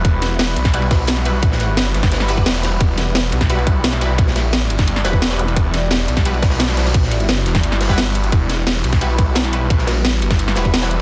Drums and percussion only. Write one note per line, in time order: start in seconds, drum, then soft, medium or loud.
0.05 kick loud
0.05 closed hi-hat medium
0.05 ride medium
0.22 snare soft
0.22 closed hi-hat medium
0.22 ride medium
0.39 snare loud
0.39 closed hi-hat medium
0.39 open hi-hat medium
0.56 closed hi-hat medium
0.56 ride medium
0.65 kick medium
0.65 snare soft
0.65 closed hi-hat soft
0.65 ride soft
0.74 closed hi-hat medium
0.74 ride medium
0.82 ride soft
0.91 kick loud
0.91 snare loud
0.91 closed hi-hat medium
0.91 open hi-hat medium
1.07 snare loud
1.07 closed hi-hat medium
1.07 ride medium
1.17 snare soft
1.25 closed hi-hat medium
1.25 ride medium
1.43 kick loud
1.43 closed hi-hat medium
1.43 ride medium
1.52 snare medium
1.60 snare soft
1.60 closed hi-hat medium
1.60 ride medium
1.77 snare loud
1.77 closed hi-hat medium
1.77 ride medium
1.85 ride soft
1.94 snare medium
1.94 closed hi-hat medium
1.94 ride medium
2.03 kick loud
2.03 snare soft
2.03 closed hi-hat soft
2.12 snare loud
2.12 closed hi-hat medium
2.12 open hi-hat medium
2.20 snare soft
2.28 closed hi-hat medium
2.28 ride medium
2.37 kick medium
2.37 ride soft
2.46 snare loud
2.46 closed hi-hat medium
2.46 open hi-hat medium
2.54 snare loud
2.54 closed hi-hat soft
2.54 open hi-hat medium
2.63 snare loud
2.63 closed hi-hat medium
2.63 ride medium
2.72 ride soft
2.80 kick loud
2.80 closed hi-hat medium
2.80 ride medium
2.97 snare soft
2.97 closed hi-hat medium
2.97 ride medium
3.15 snare loud
3.15 closed hi-hat medium
3.15 open hi-hat medium
3.32 closed hi-hat medium
3.32 ride medium
3.41 kick medium
3.41 snare soft
3.41 closed hi-hat soft
3.41 ride soft
3.50 closed hi-hat medium
3.50 ride medium
3.59 ride soft
3.67 kick loud
3.67 closed hi-hat medium
3.67 ride medium
3.84 snare loud
3.84 closed hi-hat medium
3.84 ride medium
3.93 snare soft
4.01 closed hi-hat medium
4.01 ride medium
4.18 kick loud
4.18 closed hi-hat loud
4.18 ride medium
4.27 snare medium
4.36 snare medium
4.36 closed hi-hat medium
4.36 open hi-hat medium
4.53 snare loud
4.53 closed hi-hat medium
4.53 ride medium
4.62 ride soft
4.70 closed hi-hat medium
4.70 ride medium
4.78 kick loud
4.78 snare soft
4.78 closed hi-hat soft
4.78 ride soft
4.87 closed hi-hat medium
4.87 ride medium
4.96 snare soft
5.05 snare loud
5.05 closed hi-hat medium
5.05 ride medium
5.13 kick medium
5.22 snare loud
5.22 closed hi-hat medium
5.22 ride medium
5.30 snare loud
5.30 ride medium
5.39 closed hi-hat medium
5.48 ride medium
5.56 kick loud
5.56 closed hi-hat loud
5.56 ride medium
5.74 snare soft
5.74 closed hi-hat medium
5.74 ride medium
5.91 snare loud
5.91 closed hi-hat loud
5.91 open hi-hat medium
6.08 closed hi-hat medium
6.08 ride medium
6.17 kick medium
6.17 snare soft
6.17 closed hi-hat soft
6.17 ride soft
6.25 closed hi-hat loud
6.25 ride medium
6.34 ride soft
6.42 kick loud
6.42 snare loud
6.42 closed hi-hat medium
6.42 open hi-hat medium
6.50 snare loud
6.50 open hi-hat medium
6.60 snare loud
6.60 closed hi-hat loud
6.60 open hi-hat medium
6.68 snare loud
6.68 snare soft
6.68 open hi-hat medium
6.77 snare loud
6.77 closed hi-hat medium
6.77 open hi-hat medium
6.86 snare loud
6.86 open hi-hat medium
6.94 kick loud
6.94 closed hi-hat loud
6.94 ride medium
7.03 snare medium
7.11 snare medium
7.11 closed hi-hat medium
7.11 ride medium
7.20 closed hi-hat soft
7.29 snare loud
7.29 closed hi-hat loud
7.29 ride medium
7.37 ride soft
7.46 snare medium
7.46 closed hi-hat medium
7.46 ride medium
7.55 kick loud
7.55 snare soft
7.55 snare medium
7.55 closed hi-hat soft
7.63 closed hi-hat loud
7.63 ride medium
7.72 snare soft
7.81 snare medium
7.81 closed hi-hat medium
7.81 open hi-hat medium
7.84 snare medium
7.84 open hi-hat medium
7.89 kick medium
7.89 snare loud
7.89 open hi-hat medium
7.98 snare loud
7.98 closed hi-hat loud
7.98 ride medium
8.06 closed hi-hat soft
8.15 closed hi-hat medium
8.15 ride medium
8.24 closed hi-hat soft
8.32 kick loud
8.32 closed hi-hat loud
8.32 ride medium
8.49 snare soft
8.49 closed hi-hat medium
8.49 ride medium
8.67 snare loud
8.67 closed hi-hat loud
8.67 open hi-hat medium
8.84 closed hi-hat medium
8.84 ride medium
8.92 kick medium
8.92 snare soft
8.92 closed hi-hat soft
8.92 ride soft
9.01 closed hi-hat loud
9.01 ride loud
9.10 ride soft
9.18 kick loud
9.18 closed hi-hat medium
9.18 ride medium
9.35 snare loud
9.35 closed hi-hat loud
9.35 ride medium
9.44 snare soft
9.53 closed hi-hat medium
9.53 ride medium
9.70 kick loud
9.70 closed hi-hat loud
9.70 ride medium
9.78 snare medium
9.87 snare loud
9.87 closed hi-hat medium
9.87 open hi-hat medium
10.05 snare loud
10.05 closed hi-hat medium
10.05 ride medium
10.13 ride soft
10.22 closed hi-hat medium
10.22 ride medium
10.31 kick loud
10.31 snare soft
10.31 snare medium
10.31 closed hi-hat soft
10.31 ride soft
10.39 closed hi-hat loud
10.39 ride medium
10.48 snare medium
10.56 snare loud
10.56 closed hi-hat medium
10.56 ride medium
10.65 kick medium
10.73 snare loud
10.73 closed hi-hat loud
10.73 ride medium
10.82 snare loud
10.82 ride medium
10.91 closed hi-hat medium